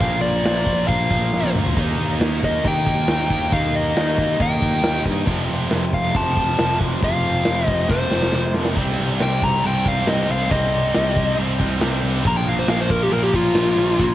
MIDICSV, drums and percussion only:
0, 0, Header, 1, 2, 480
1, 0, Start_track
1, 0, Key_signature, -3, "minor"
1, 0, Tempo, 437318
1, 4, Time_signature, 4, 2, 24, 8
1, 15524, End_track
2, 0, Start_track
2, 0, Title_t, "Drums"
2, 6, Note_on_c, 9, 36, 117
2, 9, Note_on_c, 9, 46, 85
2, 116, Note_off_c, 9, 36, 0
2, 118, Note_off_c, 9, 46, 0
2, 250, Note_on_c, 9, 46, 63
2, 360, Note_off_c, 9, 46, 0
2, 499, Note_on_c, 9, 46, 81
2, 501, Note_on_c, 9, 38, 118
2, 609, Note_off_c, 9, 46, 0
2, 610, Note_off_c, 9, 38, 0
2, 727, Note_on_c, 9, 46, 61
2, 732, Note_on_c, 9, 36, 90
2, 837, Note_off_c, 9, 46, 0
2, 841, Note_off_c, 9, 36, 0
2, 971, Note_on_c, 9, 46, 90
2, 973, Note_on_c, 9, 36, 121
2, 1081, Note_off_c, 9, 46, 0
2, 1083, Note_off_c, 9, 36, 0
2, 1215, Note_on_c, 9, 36, 91
2, 1219, Note_on_c, 9, 46, 62
2, 1325, Note_off_c, 9, 36, 0
2, 1329, Note_off_c, 9, 46, 0
2, 1458, Note_on_c, 9, 38, 65
2, 1568, Note_off_c, 9, 38, 0
2, 1574, Note_on_c, 9, 48, 69
2, 1684, Note_off_c, 9, 48, 0
2, 1702, Note_on_c, 9, 45, 80
2, 1811, Note_off_c, 9, 45, 0
2, 1825, Note_on_c, 9, 43, 98
2, 1935, Note_off_c, 9, 43, 0
2, 1938, Note_on_c, 9, 49, 93
2, 1942, Note_on_c, 9, 36, 119
2, 2047, Note_off_c, 9, 49, 0
2, 2052, Note_off_c, 9, 36, 0
2, 2180, Note_on_c, 9, 46, 70
2, 2290, Note_off_c, 9, 46, 0
2, 2424, Note_on_c, 9, 46, 89
2, 2425, Note_on_c, 9, 38, 119
2, 2534, Note_off_c, 9, 46, 0
2, 2535, Note_off_c, 9, 38, 0
2, 2669, Note_on_c, 9, 36, 79
2, 2678, Note_on_c, 9, 46, 61
2, 2779, Note_off_c, 9, 36, 0
2, 2788, Note_off_c, 9, 46, 0
2, 2908, Note_on_c, 9, 36, 126
2, 2910, Note_on_c, 9, 46, 94
2, 3018, Note_off_c, 9, 36, 0
2, 3019, Note_off_c, 9, 46, 0
2, 3143, Note_on_c, 9, 46, 66
2, 3146, Note_on_c, 9, 36, 84
2, 3253, Note_off_c, 9, 46, 0
2, 3256, Note_off_c, 9, 36, 0
2, 3278, Note_on_c, 9, 38, 30
2, 3381, Note_on_c, 9, 46, 81
2, 3382, Note_off_c, 9, 38, 0
2, 3382, Note_on_c, 9, 38, 107
2, 3491, Note_off_c, 9, 46, 0
2, 3492, Note_off_c, 9, 38, 0
2, 3511, Note_on_c, 9, 38, 35
2, 3621, Note_off_c, 9, 38, 0
2, 3627, Note_on_c, 9, 36, 71
2, 3634, Note_on_c, 9, 46, 57
2, 3737, Note_off_c, 9, 36, 0
2, 3744, Note_off_c, 9, 46, 0
2, 3867, Note_on_c, 9, 46, 82
2, 3868, Note_on_c, 9, 36, 117
2, 3976, Note_off_c, 9, 46, 0
2, 3978, Note_off_c, 9, 36, 0
2, 4118, Note_on_c, 9, 46, 66
2, 4227, Note_off_c, 9, 46, 0
2, 4353, Note_on_c, 9, 46, 82
2, 4354, Note_on_c, 9, 38, 110
2, 4463, Note_off_c, 9, 46, 0
2, 4464, Note_off_c, 9, 38, 0
2, 4589, Note_on_c, 9, 36, 84
2, 4589, Note_on_c, 9, 46, 66
2, 4699, Note_off_c, 9, 36, 0
2, 4699, Note_off_c, 9, 46, 0
2, 4831, Note_on_c, 9, 36, 119
2, 4832, Note_on_c, 9, 46, 79
2, 4941, Note_off_c, 9, 36, 0
2, 4942, Note_off_c, 9, 46, 0
2, 5071, Note_on_c, 9, 36, 82
2, 5073, Note_on_c, 9, 46, 59
2, 5181, Note_off_c, 9, 36, 0
2, 5183, Note_off_c, 9, 46, 0
2, 5189, Note_on_c, 9, 38, 33
2, 5298, Note_off_c, 9, 38, 0
2, 5306, Note_on_c, 9, 46, 79
2, 5307, Note_on_c, 9, 38, 123
2, 5416, Note_off_c, 9, 46, 0
2, 5417, Note_off_c, 9, 38, 0
2, 5539, Note_on_c, 9, 46, 61
2, 5547, Note_on_c, 9, 36, 77
2, 5649, Note_off_c, 9, 46, 0
2, 5657, Note_off_c, 9, 36, 0
2, 5777, Note_on_c, 9, 57, 99
2, 5786, Note_on_c, 9, 36, 108
2, 5887, Note_off_c, 9, 57, 0
2, 5895, Note_off_c, 9, 36, 0
2, 6026, Note_on_c, 9, 46, 67
2, 6136, Note_off_c, 9, 46, 0
2, 6265, Note_on_c, 9, 46, 91
2, 6267, Note_on_c, 9, 38, 106
2, 6375, Note_off_c, 9, 46, 0
2, 6376, Note_off_c, 9, 38, 0
2, 6506, Note_on_c, 9, 46, 62
2, 6510, Note_on_c, 9, 36, 88
2, 6616, Note_off_c, 9, 46, 0
2, 6620, Note_off_c, 9, 36, 0
2, 6745, Note_on_c, 9, 46, 96
2, 6750, Note_on_c, 9, 36, 122
2, 6855, Note_off_c, 9, 46, 0
2, 6859, Note_off_c, 9, 36, 0
2, 6991, Note_on_c, 9, 36, 85
2, 6994, Note_on_c, 9, 46, 67
2, 7101, Note_off_c, 9, 36, 0
2, 7104, Note_off_c, 9, 46, 0
2, 7118, Note_on_c, 9, 38, 29
2, 7228, Note_off_c, 9, 38, 0
2, 7232, Note_on_c, 9, 38, 121
2, 7342, Note_off_c, 9, 38, 0
2, 7351, Note_on_c, 9, 38, 35
2, 7460, Note_off_c, 9, 38, 0
2, 7472, Note_on_c, 9, 36, 82
2, 7472, Note_on_c, 9, 46, 63
2, 7582, Note_off_c, 9, 36, 0
2, 7582, Note_off_c, 9, 46, 0
2, 7712, Note_on_c, 9, 36, 112
2, 7716, Note_on_c, 9, 46, 72
2, 7822, Note_off_c, 9, 36, 0
2, 7826, Note_off_c, 9, 46, 0
2, 7946, Note_on_c, 9, 46, 62
2, 8055, Note_off_c, 9, 46, 0
2, 8180, Note_on_c, 9, 46, 83
2, 8181, Note_on_c, 9, 38, 116
2, 8290, Note_off_c, 9, 46, 0
2, 8291, Note_off_c, 9, 38, 0
2, 8424, Note_on_c, 9, 46, 65
2, 8430, Note_on_c, 9, 36, 84
2, 8534, Note_off_c, 9, 46, 0
2, 8540, Note_off_c, 9, 36, 0
2, 8663, Note_on_c, 9, 38, 73
2, 8669, Note_on_c, 9, 36, 127
2, 8773, Note_off_c, 9, 38, 0
2, 8779, Note_off_c, 9, 36, 0
2, 8907, Note_on_c, 9, 38, 85
2, 9017, Note_off_c, 9, 38, 0
2, 9028, Note_on_c, 9, 38, 68
2, 9136, Note_off_c, 9, 38, 0
2, 9136, Note_on_c, 9, 38, 91
2, 9246, Note_off_c, 9, 38, 0
2, 9376, Note_on_c, 9, 38, 99
2, 9485, Note_off_c, 9, 38, 0
2, 9494, Note_on_c, 9, 38, 91
2, 9604, Note_off_c, 9, 38, 0
2, 9608, Note_on_c, 9, 49, 85
2, 9608, Note_on_c, 9, 57, 127
2, 9623, Note_on_c, 9, 36, 115
2, 9717, Note_off_c, 9, 49, 0
2, 9717, Note_off_c, 9, 57, 0
2, 9732, Note_off_c, 9, 36, 0
2, 9857, Note_on_c, 9, 49, 68
2, 9966, Note_off_c, 9, 49, 0
2, 10100, Note_on_c, 9, 49, 97
2, 10101, Note_on_c, 9, 38, 112
2, 10210, Note_off_c, 9, 49, 0
2, 10211, Note_off_c, 9, 38, 0
2, 10338, Note_on_c, 9, 49, 80
2, 10342, Note_on_c, 9, 36, 94
2, 10448, Note_off_c, 9, 49, 0
2, 10451, Note_off_c, 9, 36, 0
2, 10577, Note_on_c, 9, 49, 102
2, 10686, Note_off_c, 9, 49, 0
2, 10816, Note_on_c, 9, 49, 69
2, 10822, Note_on_c, 9, 36, 88
2, 10925, Note_off_c, 9, 49, 0
2, 10932, Note_off_c, 9, 36, 0
2, 11056, Note_on_c, 9, 49, 83
2, 11057, Note_on_c, 9, 38, 127
2, 11166, Note_off_c, 9, 49, 0
2, 11167, Note_off_c, 9, 38, 0
2, 11298, Note_on_c, 9, 49, 66
2, 11408, Note_off_c, 9, 49, 0
2, 11530, Note_on_c, 9, 49, 79
2, 11539, Note_on_c, 9, 36, 114
2, 11640, Note_off_c, 9, 49, 0
2, 11648, Note_off_c, 9, 36, 0
2, 11771, Note_on_c, 9, 49, 63
2, 11881, Note_off_c, 9, 49, 0
2, 12012, Note_on_c, 9, 49, 86
2, 12013, Note_on_c, 9, 38, 120
2, 12122, Note_off_c, 9, 49, 0
2, 12123, Note_off_c, 9, 38, 0
2, 12245, Note_on_c, 9, 49, 68
2, 12254, Note_on_c, 9, 36, 100
2, 12355, Note_off_c, 9, 49, 0
2, 12364, Note_off_c, 9, 36, 0
2, 12491, Note_on_c, 9, 49, 100
2, 12601, Note_off_c, 9, 49, 0
2, 12731, Note_on_c, 9, 36, 89
2, 12731, Note_on_c, 9, 49, 59
2, 12840, Note_off_c, 9, 36, 0
2, 12841, Note_off_c, 9, 49, 0
2, 12965, Note_on_c, 9, 49, 94
2, 12966, Note_on_c, 9, 38, 112
2, 13075, Note_off_c, 9, 49, 0
2, 13076, Note_off_c, 9, 38, 0
2, 13202, Note_on_c, 9, 49, 61
2, 13312, Note_off_c, 9, 49, 0
2, 13435, Note_on_c, 9, 49, 87
2, 13445, Note_on_c, 9, 36, 118
2, 13545, Note_off_c, 9, 49, 0
2, 13555, Note_off_c, 9, 36, 0
2, 13681, Note_on_c, 9, 49, 75
2, 13790, Note_off_c, 9, 49, 0
2, 13920, Note_on_c, 9, 49, 92
2, 13921, Note_on_c, 9, 38, 119
2, 14029, Note_off_c, 9, 49, 0
2, 14031, Note_off_c, 9, 38, 0
2, 14155, Note_on_c, 9, 49, 76
2, 14160, Note_on_c, 9, 36, 93
2, 14265, Note_off_c, 9, 49, 0
2, 14270, Note_off_c, 9, 36, 0
2, 14391, Note_on_c, 9, 49, 109
2, 14501, Note_off_c, 9, 49, 0
2, 14631, Note_on_c, 9, 49, 71
2, 14639, Note_on_c, 9, 36, 92
2, 14740, Note_off_c, 9, 49, 0
2, 14748, Note_off_c, 9, 36, 0
2, 14872, Note_on_c, 9, 49, 87
2, 14873, Note_on_c, 9, 38, 122
2, 14981, Note_off_c, 9, 49, 0
2, 14982, Note_off_c, 9, 38, 0
2, 15115, Note_on_c, 9, 49, 64
2, 15225, Note_off_c, 9, 49, 0
2, 15361, Note_on_c, 9, 36, 113
2, 15361, Note_on_c, 9, 49, 90
2, 15471, Note_off_c, 9, 36, 0
2, 15471, Note_off_c, 9, 49, 0
2, 15524, End_track
0, 0, End_of_file